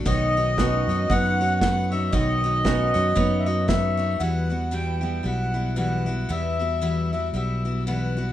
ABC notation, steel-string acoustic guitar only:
X:1
M:4/4
L:1/8
Q:"Swing" 1/4=115
K:Edor
V:1 name="Steel-string acoustic guitar"
[B,^DFc] [DFc] [B,DFc] [DFc] [B,DFc] [DFc] [B,DFc] [DFc] | [B,^DFc] [DFc] [B,DFc] [DFc] [B,DFc] [DFc] [B,DFc] [DFc] | [E,,E,G,B,EF] [G,B,EF] [E,,E,G,B,EF] [G,B,EF] [G,B,EF] [G,B,EF] [E,,E,G,B,EF] [G,B,EF] | [E,,E,G,B,EF] [G,B,EF] [E,,E,G,B,EF] [G,B,EF] [G,B,EF] [G,B,EF] [E,,E,G,B,EF] [G,B,EF] |]